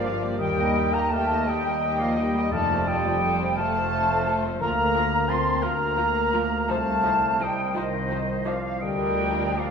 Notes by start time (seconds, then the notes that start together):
Already playing: G1 G2 F3 A#4 D5 F5
0.05 G3 D4 F4 F5
0.22 A#3 G4 D5
0.38 D#2 D#3 G3 G4 D#5 G5
0.43 G3 G5
0.59 A#3 A#4 D#5
0.76 G3 D#4 G4 G5
0.93 A#3 A#4 D#5 G5 A#5
1.11 A3 G4 A#4 F5 A5
1.15 G3 G5
1.32 A#3 A#4 D#5
1.47 D#2 G3 D#5 G5
1.52 G4
1.67 A#3 A#4 D#5
1.83 G3 G4 A#4 G5
1.99 F3 A#3 D5 D#5 F5
2.05 A#4
2.16 G3 D#4 D#5 G5
2.23 G4
2.35 A#3 D#5
2.40 A#4
2.51 F1 F2 F3 A3 A4 D5 F5 A5
2.58 F4
2.70 F3 A4 C5
2.86 G3 A3 F4 A4 D#5 G5
2.91 F4
3.04 F3 A4 C5
3.21 A3 A4 C5
3.25 F4
3.40 F3 A4 C5
3.56 F1 F2 A3 F4 A4 C5 F5 A5 F6
3.75 F3 A4 C5
3.92 A3 F4 A4 C5
4.09 F3 C5
4.13 A4
4.25 A3 F4 A4
4.31 F4
4.42 F3 A4 C5
4.60 D2 D3 F3 A#3 F4 A#4 F5 A#5
4.94 F3 A#3 F4 A#4
5.27 F3 C4 F4 A#4 F5 A5 C6
5.62 D2 F3 A#3 F4 A#4 F5 A#5
5.97 F3 F4 A#4 F5
6.33 F3 A#3 F4 A#4
6.68 C2 C3 F3 A3 D#4 C5 F5 A5
7.03 F3 C4 D#4 C5
7.39 F3 D#4 C5 G5
7.44 G3 D#5
7.74 C2 D#3 F3 D#4 C5 D#5 F5
8.09 F3 D#4 C5 D#5
8.45 F3 C4 D#4 C5 D5 F5
8.81 D2 D3 F3 G3 D4 A#4 D#5 G5
9.20 A#3
9.58 F3 F4 D5 F5